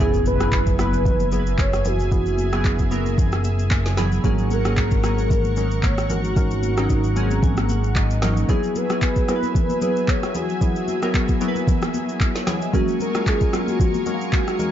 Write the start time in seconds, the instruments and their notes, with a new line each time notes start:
Already playing: synth keys B4 E5
0.00 analog synth bass F#1, synth keys F#3 B3 E4 G#4, synth stab B3 E4 G#4, analog synth pad G#4 E5 G#5, soft synth lead G#4, impact
0.14 shaker
0.26 soft synth lead B4, high conga, shaker
0.40 synth keys F#3 B3 E4 G#4, synth stab B3 E4 G#4, cross-stick, shaker
0.52 kick, clap, shaker
0.66 kick, shaker
0.78 synth keys F#3 B3 E4 B4, synth stab B3 E4 G#4, soft synth lead B4, cross-stick, high conga, shaker
0.93 high conga, shaker
1.05 kick, low conga, shaker
1.20 high conga, shaker
1.32 synth keys F#3 B3 E4 A#4, synth stab B3 E4 G#4, soft synth lead B4, high conga, shaker
1.39 synth keys B4
1.47 shaker
1.58 soft synth lead C#5, kick, clap, high conga, shaker
1.73 cross-stick, shaker
1.85 synth stab B3 E4 G#4, soft synth lead F#4, low conga, shaker
2.00 shaker
2.11 synth stab B3 E4 G#4, kick, low conga, shaker
2.26 shaker
2.38 high conga, shaker
2.52 synth keys F#3 B3 E4 G#4, synth stab B3 E4 G#4, cross-stick, shaker
2.65 kick, clap, shaker
2.79 kick, shaker
2.91 synth keys F#3 B3 E4 A#4, synth stab B3 E4 G#4, high conga, shaker
3.06 high conga, shaker
3.18 kick, low conga, shaker
3.32 cross-stick, high conga, shaker
3.44 synth keys E5, high conga, shaker
3.59 shaker
3.71 synth keys G#5, kick, clap, high conga, shaker
3.86 snare, shaker
3.97 synth keys F#3 B3 E4 G#4 B5, synth stab B3 E4 G#4, cross-stick, snare, low conga, shaker
4.12 shaker
4.24 analog synth bass G#1, synth keys F#3 A#3 C#4 G#4, synth stab C#4 F#4 A#4, soft synth lead G#4, analog synth pad A#4 F#5 C#6, kick, low conga, shaker
4.38 shaker
4.51 soft synth lead A#4, high conga, shaker
4.65 synth keys F#3 A#3 C#4 G#4, synth stab C#4 F#4 A#4, cross-stick, shaker
4.77 kick, clap, shaker
4.91 kick, shaker
5.03 synth keys F#3 A#3 C#4 G#4, synth stab C#4 F#4 A#4, soft synth lead A#4, cross-stick, high conga, shaker
5.18 high conga, shaker
5.30 kick, low conga, shaker
5.44 high conga, shaker
5.56 synth keys F#3 A#3 C#4 D#4, synth stab C#4 F#4 A#4, soft synth lead A#4, high conga, shaker
5.71 shaker
5.83 soft synth lead C#5, kick, clap, high conga, shaker
5.98 cross-stick, shaker
6.10 synth stab C#4 F#4 A#4, soft synth lead F#4, low conga, shaker
6.24 shaker
6.36 synth stab C#4 F#4 A#4, kick, low conga, shaker
6.51 shaker
6.63 high conga, shaker
6.77 synth keys F#3 A#3 C#4 D#4, synth stab C#4 F#4 A#4, cross-stick, shaker
6.89 kick, shaker
7.04 shaker
7.16 synth keys F#3 A#3 C4 G#4 A#5, synth stab C#4 F#4 A#4, high conga, shaker
7.23 synth keys C#4
7.31 high conga, shaker
7.43 synth keys G#5, kick, low conga, shaker
7.57 cross-stick, high conga, shaker
7.69 synth keys F#5, high conga, shaker
7.84 shaker
7.96 synth keys D#5, kick, clap, high conga, shaker
8.10 shaker
8.22 synth keys F#3 A#3 C#4 D#4, synth stab C#4 F#4 A#4, cross-stick, snare, low conga, shaker
8.37 shaker
8.48 synth keys F#3 B3 E4 G#4, synth stab F#3 B3 E4 G#4, analog synth pad F#3 G#4 E5 G#5, soft synth lead G#4, kick, low conga, shaker
8.63 shaker
8.75 soft synth lead B4, high conga, shaker
8.90 synth keys F#3 B3 E4 G#4, synth stab F#3 B3 E4 G#4, cross-stick, shaker
9.02 kick, clap, shaker
9.16 kick, shaker
9.28 synth keys F#3 B3 E4 A#4, synth stab F#3 B3 E4 G#4, soft synth lead B4, cross-stick, high conga, shaker
9.36 synth keys B4
9.43 high conga, shaker
9.55 kick, low conga, shaker
9.70 high conga, shaker
9.81 synth keys F#3 A#3 E4 G#4, synth stab F#3 B3 E4 G#4, soft synth lead B4, high conga, shaker
9.88 synth keys B3
9.96 shaker
10.08 soft synth lead C#5, kick, clap, high conga, shaker
10.23 cross-stick, shaker
10.35 synth stab F#3 B3 E4 G#4, soft synth lead F#4, low conga, shaker
10.49 shaker
10.61 synth stab F#3 B3 E4 G#4, kick, low conga, shaker
10.76 shaker
10.88 high conga, shaker
11.02 synth keys F#3 B3 E4 A#4, synth stab F#3 B3 E4 G#4, cross-stick, shaker
11.14 kick, clap, shaker
11.28 kick, shaker
11.41 synth keys F#3 B3 E4 A#4, synth stab F#3 B3 E4 G#4, high conga, shaker
11.48 synth keys B4
11.55 high conga, shaker
11.68 kick, low conga, shaker
11.82 cross-stick, high conga, shaker
11.94 high conga, shaker
12.09 shaker
12.21 kick, clap, high conga, shaker
12.35 synth keys C#5 F#5, snare, shaker
12.47 synth stab F#3 B3 E4 G#4, synth keys D#5 G#5, cross-stick, snare, low conga, shaker
12.62 synth keys B4 E5, shaker
12.73 synth keys F#3 A#3 C#4 G#4, synth stab G#3 C#4 F#4 A#4, analog synth pad G#3 A#4 G#5 C#6, soft synth lead F#4, kick, low conga, shaker
12.88 shaker
13.00 soft synth lead A#4, high conga, shaker
13.15 synth keys F#3 A#3 C#4 F4, synth stab G#3 C#4 F#4 A#4, cross-stick, shaker
13.27 soft synth lead G#4, kick, clap, shaker
13.41 kick, shaker
13.53 synth keys F#3 A#3 C4 F4, synth stab G#3 C#4 F#4 A#4, cross-stick, high conga, shaker
13.60 synth keys C#4
13.68 soft synth lead F#4, high conga, shaker
13.80 kick, low conga, shaker
13.94 high conga, shaker
14.06 synth keys F#3 A#3 C#4 D#4, synth stab G#3 C#4 F#4 A#4, high conga, shaker
14.14 synth keys F5
14.21 shaker
14.33 kick, clap, high conga, shaker
14.48 cross-stick, shaker
14.59 synth stab G#3 C#4 F#4 A#4, low conga, shaker